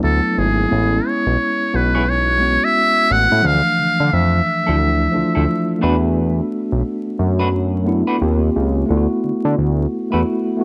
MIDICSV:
0, 0, Header, 1, 5, 480
1, 0, Start_track
1, 0, Tempo, 681818
1, 489, Time_signature, 4, 2, 24, 8
1, 7493, End_track
2, 0, Start_track
2, 0, Title_t, "Muted trumpet"
2, 0, Program_c, 0, 59
2, 28, Note_on_c, 0, 69, 76
2, 269, Note_on_c, 0, 68, 74
2, 279, Note_off_c, 0, 69, 0
2, 755, Note_on_c, 0, 73, 81
2, 766, Note_off_c, 0, 68, 0
2, 1236, Note_on_c, 0, 71, 76
2, 1247, Note_off_c, 0, 73, 0
2, 1475, Note_on_c, 0, 73, 85
2, 1485, Note_off_c, 0, 71, 0
2, 1862, Note_on_c, 0, 76, 93
2, 1873, Note_off_c, 0, 73, 0
2, 2196, Note_on_c, 0, 78, 98
2, 2206, Note_off_c, 0, 76, 0
2, 2438, Note_on_c, 0, 77, 89
2, 2449, Note_off_c, 0, 78, 0
2, 2914, Note_on_c, 0, 76, 82
2, 2924, Note_off_c, 0, 77, 0
2, 4101, Note_off_c, 0, 76, 0
2, 7493, End_track
3, 0, Start_track
3, 0, Title_t, "Clean electric guitar"
3, 0, Program_c, 1, 27
3, 1371, Note_on_c, 1, 73, 58
3, 1375, Note_on_c, 1, 68, 56
3, 1377, Note_on_c, 1, 64, 53
3, 1382, Note_on_c, 1, 59, 49
3, 1425, Note_off_c, 1, 73, 0
3, 1427, Note_off_c, 1, 68, 0
3, 1428, Note_off_c, 1, 64, 0
3, 1431, Note_off_c, 1, 59, 0
3, 3285, Note_on_c, 1, 69, 54
3, 3291, Note_on_c, 1, 64, 56
3, 3293, Note_on_c, 1, 57, 48
3, 3297, Note_on_c, 1, 53, 42
3, 3342, Note_off_c, 1, 69, 0
3, 3345, Note_off_c, 1, 64, 0
3, 3346, Note_off_c, 1, 57, 0
3, 3348, Note_off_c, 1, 53, 0
3, 3765, Note_on_c, 1, 69, 51
3, 3769, Note_on_c, 1, 64, 53
3, 3772, Note_on_c, 1, 57, 50
3, 3775, Note_on_c, 1, 53, 46
3, 3822, Note_off_c, 1, 69, 0
3, 3824, Note_off_c, 1, 64, 0
3, 3825, Note_off_c, 1, 57, 0
3, 3827, Note_off_c, 1, 53, 0
3, 4093, Note_on_c, 1, 57, 59
3, 4098, Note_on_c, 1, 62, 62
3, 4101, Note_on_c, 1, 66, 62
3, 4102, Note_on_c, 1, 71, 71
3, 4189, Note_off_c, 1, 57, 0
3, 4191, Note_off_c, 1, 62, 0
3, 4193, Note_off_c, 1, 66, 0
3, 4194, Note_off_c, 1, 71, 0
3, 5205, Note_on_c, 1, 71, 65
3, 5212, Note_on_c, 1, 66, 57
3, 5217, Note_on_c, 1, 62, 52
3, 5218, Note_on_c, 1, 57, 48
3, 5262, Note_off_c, 1, 71, 0
3, 5265, Note_off_c, 1, 66, 0
3, 5268, Note_off_c, 1, 57, 0
3, 5268, Note_off_c, 1, 62, 0
3, 5684, Note_on_c, 1, 71, 55
3, 5686, Note_on_c, 1, 66, 53
3, 5693, Note_on_c, 1, 62, 46
3, 5694, Note_on_c, 1, 57, 41
3, 5741, Note_off_c, 1, 71, 0
3, 5742, Note_off_c, 1, 66, 0
3, 5746, Note_off_c, 1, 57, 0
3, 5746, Note_off_c, 1, 62, 0
3, 7124, Note_on_c, 1, 71, 54
3, 7130, Note_on_c, 1, 66, 49
3, 7132, Note_on_c, 1, 64, 46
3, 7134, Note_on_c, 1, 57, 46
3, 7182, Note_off_c, 1, 71, 0
3, 7184, Note_off_c, 1, 66, 0
3, 7185, Note_off_c, 1, 64, 0
3, 7187, Note_off_c, 1, 57, 0
3, 7493, End_track
4, 0, Start_track
4, 0, Title_t, "Tine electric piano"
4, 0, Program_c, 2, 4
4, 0, Control_c, 2, 64, 127
4, 0, Note_on_c, 2, 54, 74
4, 0, Note_on_c, 2, 57, 69
4, 0, Note_on_c, 2, 59, 71
4, 0, Note_on_c, 2, 62, 75
4, 0, Note_on_c, 2, 64, 77
4, 199, Note_off_c, 2, 54, 0
4, 204, Note_off_c, 2, 57, 0
4, 209, Note_off_c, 2, 59, 0
4, 214, Note_off_c, 2, 64, 0
4, 237, Note_on_c, 2, 54, 60
4, 246, Note_on_c, 2, 57, 52
4, 255, Note_on_c, 2, 59, 48
4, 264, Note_on_c, 2, 64, 64
4, 460, Note_off_c, 2, 54, 0
4, 465, Note_off_c, 2, 57, 0
4, 469, Note_off_c, 2, 59, 0
4, 474, Note_off_c, 2, 64, 0
4, 476, Note_on_c, 2, 56, 71
4, 487, Note_on_c, 2, 59, 65
4, 495, Note_on_c, 2, 61, 64
4, 499, Control_c, 2, 64, 0
4, 505, Note_off_c, 2, 62, 0
4, 505, Note_on_c, 2, 64, 82
4, 624, Control_c, 2, 64, 127
4, 1351, Note_off_c, 2, 56, 0
4, 1357, Note_off_c, 2, 59, 0
4, 1361, Note_off_c, 2, 61, 0
4, 1366, Note_off_c, 2, 64, 0
4, 1679, Note_on_c, 2, 56, 61
4, 1688, Note_on_c, 2, 59, 63
4, 1698, Note_on_c, 2, 61, 54
4, 1707, Note_on_c, 2, 66, 69
4, 2336, Note_off_c, 2, 56, 0
4, 2340, Note_off_c, 2, 59, 0
4, 2345, Note_off_c, 2, 61, 0
4, 2350, Note_off_c, 2, 66, 0
4, 2404, Note_on_c, 2, 53, 76
4, 2414, Note_on_c, 2, 57, 69
4, 2417, Control_c, 2, 64, 0
4, 2422, Note_on_c, 2, 62, 64
4, 2432, Note_on_c, 2, 52, 82
4, 2553, Control_c, 2, 64, 127
4, 3147, Note_off_c, 2, 53, 0
4, 3151, Note_off_c, 2, 57, 0
4, 3156, Note_off_c, 2, 62, 0
4, 3161, Note_off_c, 2, 52, 0
4, 3269, Note_on_c, 2, 53, 59
4, 3279, Note_on_c, 2, 57, 55
4, 3289, Note_on_c, 2, 62, 53
4, 3297, Note_on_c, 2, 64, 70
4, 3571, Note_off_c, 2, 53, 0
4, 3576, Note_off_c, 2, 57, 0
4, 3581, Note_off_c, 2, 62, 0
4, 3585, Note_off_c, 2, 64, 0
4, 3600, Note_on_c, 2, 53, 76
4, 3609, Note_on_c, 2, 57, 70
4, 3619, Note_on_c, 2, 62, 73
4, 3629, Note_on_c, 2, 65, 86
4, 4039, Note_off_c, 2, 53, 0
4, 4044, Note_off_c, 2, 57, 0
4, 4048, Note_off_c, 2, 62, 0
4, 4053, Note_off_c, 2, 65, 0
4, 4078, Note_on_c, 2, 57, 71
4, 4087, Note_on_c, 2, 59, 73
4, 4097, Note_on_c, 2, 62, 69
4, 4098, Control_c, 2, 64, 0
4, 4107, Note_on_c, 2, 66, 78
4, 4209, Control_c, 2, 64, 127
4, 4952, Note_off_c, 2, 57, 0
4, 4957, Note_off_c, 2, 59, 0
4, 4962, Note_off_c, 2, 62, 0
4, 4967, Note_off_c, 2, 66, 0
4, 5517, Note_on_c, 2, 57, 75
4, 5528, Note_on_c, 2, 59, 74
4, 5536, Note_on_c, 2, 62, 70
4, 5547, Note_on_c, 2, 64, 89
4, 5763, Note_off_c, 2, 57, 0
4, 5764, Note_on_c, 2, 58, 84
4, 5769, Note_off_c, 2, 59, 0
4, 5771, Note_on_c, 2, 60, 73
4, 5773, Note_off_c, 2, 62, 0
4, 5777, Control_c, 2, 64, 0
4, 5778, Note_off_c, 2, 64, 0
4, 5782, Note_on_c, 2, 65, 78
4, 5791, Note_on_c, 2, 67, 85
4, 5904, Control_c, 2, 64, 127
4, 6201, Note_off_c, 2, 58, 0
4, 6205, Note_off_c, 2, 60, 0
4, 6210, Note_off_c, 2, 65, 0
4, 6215, Note_off_c, 2, 67, 0
4, 6239, Note_on_c, 2, 57, 92
4, 6249, Note_on_c, 2, 59, 78
4, 6257, Control_c, 2, 64, 0
4, 6258, Note_on_c, 2, 64, 84
4, 6269, Note_on_c, 2, 65, 81
4, 6315, Note_off_c, 2, 65, 0
4, 6316, Note_on_c, 2, 66, 100
4, 6394, Control_c, 2, 64, 127
4, 6984, Note_off_c, 2, 57, 0
4, 6989, Note_off_c, 2, 59, 0
4, 6994, Note_off_c, 2, 64, 0
4, 7022, Note_off_c, 2, 66, 0
4, 7113, Note_on_c, 2, 57, 74
4, 7122, Note_on_c, 2, 59, 59
4, 7133, Note_on_c, 2, 64, 66
4, 7141, Note_on_c, 2, 66, 79
4, 7413, Note_off_c, 2, 57, 0
4, 7417, Note_off_c, 2, 59, 0
4, 7423, Note_off_c, 2, 64, 0
4, 7427, Note_off_c, 2, 66, 0
4, 7442, Note_on_c, 2, 57, 75
4, 7451, Note_on_c, 2, 59, 75
4, 7461, Note_on_c, 2, 64, 71
4, 7470, Note_on_c, 2, 66, 84
4, 7493, Note_off_c, 2, 57, 0
4, 7493, Note_off_c, 2, 59, 0
4, 7493, Note_off_c, 2, 64, 0
4, 7493, Note_off_c, 2, 66, 0
4, 7493, End_track
5, 0, Start_track
5, 0, Title_t, "Analog synth bass"
5, 0, Program_c, 3, 38
5, 25, Note_on_c, 3, 38, 92
5, 145, Note_off_c, 3, 38, 0
5, 267, Note_on_c, 3, 32, 87
5, 466, Note_off_c, 3, 32, 0
5, 507, Note_on_c, 3, 33, 94
5, 706, Note_off_c, 3, 33, 0
5, 891, Note_on_c, 3, 35, 81
5, 964, Note_off_c, 3, 35, 0
5, 1224, Note_on_c, 3, 35, 74
5, 1816, Note_off_c, 3, 35, 0
5, 2187, Note_on_c, 3, 33, 75
5, 2306, Note_off_c, 3, 33, 0
5, 2336, Note_on_c, 3, 45, 93
5, 2407, Note_off_c, 3, 45, 0
5, 2425, Note_on_c, 3, 38, 97
5, 2545, Note_off_c, 3, 38, 0
5, 2664, Note_on_c, 3, 50, 42
5, 2720, Note_off_c, 3, 50, 0
5, 2817, Note_on_c, 3, 50, 97
5, 2888, Note_off_c, 3, 50, 0
5, 2908, Note_on_c, 3, 41, 95
5, 3106, Note_off_c, 3, 41, 0
5, 3299, Note_on_c, 3, 38, 76
5, 3575, Note_off_c, 3, 38, 0
5, 3630, Note_on_c, 3, 38, 46
5, 3684, Note_off_c, 3, 38, 0
5, 3777, Note_on_c, 3, 38, 76
5, 3848, Note_off_c, 3, 38, 0
5, 4107, Note_on_c, 3, 40, 100
5, 4512, Note_off_c, 3, 40, 0
5, 4733, Note_on_c, 3, 35, 81
5, 4806, Note_off_c, 3, 35, 0
5, 5063, Note_on_c, 3, 42, 80
5, 5656, Note_off_c, 3, 42, 0
5, 5785, Note_on_c, 3, 39, 98
5, 5984, Note_off_c, 3, 39, 0
5, 6026, Note_on_c, 3, 37, 86
5, 6225, Note_off_c, 3, 37, 0
5, 6266, Note_on_c, 3, 38, 97
5, 6386, Note_off_c, 3, 38, 0
5, 6507, Note_on_c, 3, 50, 44
5, 6561, Note_off_c, 3, 50, 0
5, 6652, Note_on_c, 3, 50, 94
5, 6725, Note_off_c, 3, 50, 0
5, 6747, Note_on_c, 3, 38, 90
5, 6946, Note_off_c, 3, 38, 0
5, 7136, Note_on_c, 3, 40, 79
5, 7207, Note_off_c, 3, 40, 0
5, 7493, End_track
0, 0, End_of_file